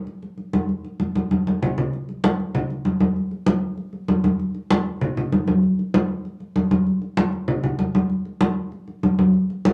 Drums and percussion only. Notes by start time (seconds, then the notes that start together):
0.07 high conga
0.22 high conga
0.38 high conga
0.53 high conga
0.69 high conga
0.85 high conga
1.00 high conga
1.15 high conga
1.31 high conga
1.47 high conga
1.62 low conga
1.78 low conga
1.93 high conga
2.09 high conga
2.24 high conga
2.40 high conga
2.55 high conga, low conga
2.70 high conga
2.85 high conga
3.00 high conga
3.16 high conga
3.31 high conga
3.46 high conga
3.77 high conga
3.93 high conga
4.08 high conga
4.24 high conga
4.40 high conga
4.55 high conga
4.71 high conga
4.86 high conga
5.01 high conga, low conga
5.17 high conga, low conga
5.32 high conga
5.48 high conga
5.63 high conga
5.79 high conga
5.94 high conga
6.25 high conga
6.40 high conga
6.56 high conga
6.71 high conga
6.87 high conga
7.02 high conga
7.17 high conga
7.32 high conga
7.48 high conga, low conga
7.63 high conga, low conga
7.79 high conga
7.95 high conga
8.10 high conga
8.25 high conga
8.41 high conga
8.72 high conga
8.88 high conga
9.03 high conga
9.19 high conga
9.34 high conga
9.50 high conga
9.65 high conga